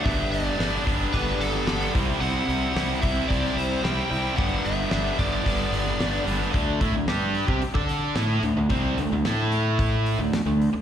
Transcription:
<<
  \new Staff \with { instrumentName = "Lead electric guitar" } { \time 4/4 \key d \mixolydian \tempo 4 = 111 e''8 d''4 r8 b'8 a'4 r8 | fis''4. e''8 d''8 c''8 g''4 | fis''8 e''4 d''2 r8 | r1 |
r1 | }
  \new Staff \with { instrumentName = "Overdriven electric guitar" } { \time 4/4 \key d \mixolydian <g, d g b d'>4 <g, d g b d'>8 <g, d g b d'>8 <g, d g b d'>4 <g, d g b d'>8 <c g c' e'>8 | <c g c' e'>4 <c g c' e'>8 <c g c' e'>8 <c g c' e'>4 <c g c' e'>8 <c g c' e'>8 | <g, d g b d'>4 <g, d g b d'>8 <g, d g b d'>8 <g, d g b d'>4 <g, d g b d'>8 <g, d g b d'>8 | <d a d'>8 <a e'>16 <d a>16 <g d' g'>8. <c' g'>16 r16 <d' a' d''>8. <a e' a'>8 <d a>16 <d a>16 |
<c g c'>8 <d a>16 <d a>16 <a e' a'>4.~ <a e' a'>16 <d a>8 <d a>8 r16 | }
  \new Staff \with { instrumentName = "Fingered electric bass" } { \clef bass \time 4/4 \key d \mixolydian g,,8 g,,8 g,,8 g,,8 g,,8 g,,8 g,,8 c,8 | c,8 c,8 c,8 c,8 c,8 c,8 c,8 c,8 | g,,8 g,,8 g,,8 g,,8 g,,8 g,,8 g,,8 g,,8 | d,8 a,16 d,16 g,8. c16 r16 d8. a,8 d,16 d,16 |
c,8 d,16 d,16 a,4.~ a,16 d,8 d,8 r16 | }
  \new DrumStaff \with { instrumentName = "Drums" } \drummode { \time 4/4 <hho bd>8 hho8 <hho sn>8 <hho bd>8 <hho bd>8 hho16 sn16 <hho sn>8 <hho bd>8 | hho8 hho8 <hho sn>8 <hho bd>8 <hho bd>8 hho8 <hho sn>8 hho8 | <hho bd>8 hho8 <hho sn>8 <hho bd>8 <hho bd>8 hho16 sn16 <hho sn>8 hho16 sn16 | <hho bd>8 <hho bd>8 <hho sn>8 hho16 bd16 hho16 bd16 hho8 <hho sn>8 hho8 |
<hho bd>8 hho8 <hho sn>8 hho8 <hho bd>8 hho8 <hho sn>8 hho8 | }
>>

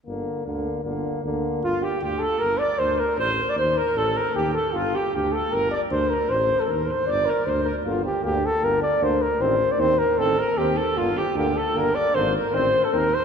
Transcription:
<<
  \new Staff \with { instrumentName = "Alto saxophone" } { \time 2/4 \key g \minor \tempo 4 = 154 r2 | r2 | f'8 g'8 g'8 a'8 | bes'8 d''8 c''8 bes'8 |
c''8. d''16 c''8 bes'8 | a'8 bes'8 g'8 a'8 | f'8 g'8 g'8 a'8 | bes'8 d''8 c''8 bes'8 |
c''8. a'16 bes'8 c''8 | d''8 bes'8 c''8 bes'8 | r2 | r2 |
r2 | a'8 bes'8 g'8 a'8 | f'8 g'8 g'8 a'8 | bes'8 d''8 c''8 bes'8 |
c''8. a'16 bes'8 c''8 | }
  \new Staff \with { instrumentName = "Flugelhorn" } { \time 2/4 \key g \minor r2 | r2 | f'8 g'8 g'8 a'8 | bes'8 d''8 c''8 bes'8 |
c''8. d''16 c''8 bes'8 | a'8 bes'8 g'8 a'8 | f'8 g'8 g'8 a'8 | bes'8 d''8 c''8 bes'8 |
c''8. a'16 bes'8 c''8 | d''8 bes'8 c''8 bes'8 | f'8 g'8 g'8 a'8 | bes'8 d''8 c''8 bes'8 |
c''8. d''16 c''8 bes'8 | a'8 bes'8 g'8 a'8 | f'8 g'8 g'8 a'8 | bes'8 d''8 c''8 bes'8 |
c''8. a'16 bes'8 c''8 | }
  \new Staff \with { instrumentName = "Trombone" } { \time 2/4 \key g \minor bes4 bes4 | bes4 bes4 | r2 | r2 |
r2 | r2 | r2 | r2 |
r2 | r2 | bes4 bes4 | bes4 bes4 |
c'4 c'4 | c'4 c'4 | bes4 bes4 | bes4 bes4 |
c'4 c'4 | }
  \new Staff \with { instrumentName = "Euphonium" } { \clef bass \time 2/4 \key g \minor d4 d4 | d4 d4 | r2 | r2 |
r2 | r2 | r2 | r2 |
r2 | r2 | d4 d4 | d4 d4 |
ees4 ees4 | ees4 ees4 | d4 d4 | d4 d4 |
ees4 ees4 | }
  \new Staff \with { instrumentName = "Tuba" } { \clef bass \time 2/4 \key g \minor g,,4 d,4 | g,,4 d,4 | g,,4 d,4 | g,,4 d,4 |
a,,4 ees,4 | a,,4 ees,4 | g,,4 d,4 | g,,4 d,4 |
a,,4 ees,4 | g,,4 d,4 | g,,4 d,4 | g,,4 d,4 |
a,,4 ees,4 | a,,4 ees,4 | g,,4 d,4 | g,,4 aes,,4 |
a,,4 ees,4 | }
>>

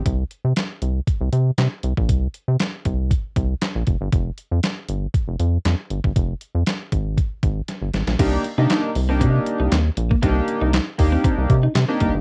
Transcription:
<<
  \new Staff \with { instrumentName = "Analog polysynth" } { \time 4/4 \key c \minor \tempo 4 = 118 r1 | r1 | r1 | r1 |
<bes d' ees' g'>8 r16 <bes d' ees' g'>8. r16 <bes d' ees' g'>4~ <bes d' ees' g'>16 r4 | <bes d' ees' g'>4 r8 <bes d' ees' g'>4 r8. <bes d' ees' g'>8 r16 | }
  \new Staff \with { instrumentName = "Clean electric guitar" } { \time 4/4 \key c \minor r1 | r1 | r1 | r1 |
c'16 r8 ees'16 ees'16 r8 c'16 c'16 r8 ees'16 c'16 r8 bes16 | c'16 r8 ees'16 ees'16 r8 c'16 c'16 r8 ees'16 r16 c'16 bes16 r16 | }
  \new Staff \with { instrumentName = "Analog synth bass" } { \clef bass \time 4/4 \key c \minor c,8 r16 c16 r8 c,8 r16 c,16 c8 c16 r16 c,16 bes,,16 | c,8 r16 c16 r8 c,8. r16 c,8 r16 bes,,16 f,,16 g,,16 | f,,8 r16 f,16 r8 g,,8 r16 f,,16 f,8 f,16 r16 g,,16 g,,16 | f,,8 r16 f,16 r8 aes,,8. r16 aes,,8 r16 g,,16 aes,,16 bes,,16 |
c,8 r16 c16 r8 c,8 c8 r16 c,16 ees,8 bes,,8 | c,8 r16 c,8 r16 ees,8 r16 c,16 c8 c16 r16 c,16 g,,16 | }
  \new DrumStaff \with { instrumentName = "Drums" } \drummode { \time 4/4 <hh bd>8 hh8 <hc hh sn>8 hh8 <hh bd>8 hh8 <hc hh sn>8 hh16 bd16 | <hh bd>8 hh8 <hc hh sn>8 <hh bd>8 <hh bd>8 <hh bd>8 <hc hh sn>8 <hh bd>8 | <hh bd>8 hh8 <hc hh sn>8 hh8 <hh bd>8 hh8 <hc hh sn>8 hh16 bd16 | <hh bd>8 hh8 <hc hh sn>8 <hh bd>8 <hh bd>8 <hh bd>8 <hh sn>8 <hh sn>16 <hh sn>16 |
<cymc hh bd>8 hh8 <hc hh sn>8 hho8 <hh bd>8 hh8 <hc hh sn>8 hh16 bd16 | <hh bd>8 hh8 <hc hh sn>8 <hho bd>8 <hh bd>8 <hh bd>8 <hc hh sn>8 <hh bd>8 | }
>>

